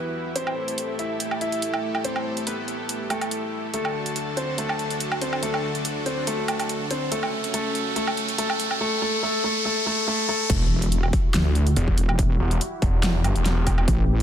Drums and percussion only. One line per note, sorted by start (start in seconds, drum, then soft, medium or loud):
0.36 closed hi-hat medium
0.47 low woodblock medium
0.68 closed hi-hat soft
0.78 closed hi-hat medium
0.99 closed hi-hat medium
1.20 closed hi-hat medium
1.31 low woodblock medium
1.41 closed hi-hat medium
1.52 closed hi-hat medium
1.62 closed hi-hat medium
1.74 low woodblock medium
1.95 low woodblock medium
2.05 closed hi-hat medium
2.16 low woodblock medium
2.37 closed hi-hat soft
2.47 closed hi-hat medium
2.68 closed hi-hat medium
2.89 closed hi-hat medium
3.10 closed hi-hat medium
3.10 low woodblock medium
3.21 closed hi-hat medium
3.21 low woodblock medium
3.31 closed hi-hat medium
3.74 closed hi-hat medium
3.85 low woodblock medium
4.06 closed hi-hat medium
4.16 closed hi-hat medium
4.37 closed hi-hat soft
4.58 closed hi-hat medium
4.69 low woodblock medium
4.79 closed hi-hat soft
4.91 closed hi-hat medium
5.00 closed hi-hat medium
5.12 low woodblock medium
5.21 open hi-hat medium
5.33 low woodblock medium
5.43 closed hi-hat medium
5.54 low woodblock medium
5.75 closed hi-hat soft
5.85 closed hi-hat medium
6.06 closed hi-hat medium
6.27 closed hi-hat medium
6.48 closed hi-hat medium
6.48 low woodblock medium
6.60 closed hi-hat medium
6.60 low woodblock medium
6.69 closed hi-hat medium
6.91 open hi-hat medium
7.12 closed hi-hat medium
7.23 low woodblock medium
7.44 closed hi-hat medium
7.54 closed hi-hat medium
7.75 closed hi-hat medium
7.96 closed hi-hat medium
8.07 low woodblock medium
8.17 closed hi-hat medium
8.29 closed hi-hat medium
8.38 closed hi-hat medium
8.50 low woodblock medium
8.60 open hi-hat loud
8.71 low woodblock medium
10.50 kick loud
10.50 closed hi-hat medium
10.50 crash loud
10.82 closed hi-hat medium
10.92 closed hi-hat medium
11.03 low woodblock medium
11.13 kick loud
11.13 open hi-hat medium
11.34 snare loud
11.34 closed hi-hat medium
11.55 closed hi-hat medium
11.67 closed hi-hat medium
11.76 closed hi-hat medium
11.88 kick medium
11.98 open hi-hat loud
12.09 low woodblock medium
12.19 kick loud
12.19 closed hi-hat medium
12.51 closed hi-hat medium
12.61 closed hi-hat medium
12.82 kick loud
12.82 open hi-hat medium
13.03 snare loud
13.03 closed hi-hat medium
13.24 closed hi-hat medium
13.24 low woodblock medium
13.36 closed hi-hat medium
13.46 snare medium
13.46 closed hi-hat medium
13.67 kick medium
13.67 open hi-hat loud
13.67 low woodblock medium
13.78 low woodblock medium
13.88 kick loud
13.88 closed hi-hat medium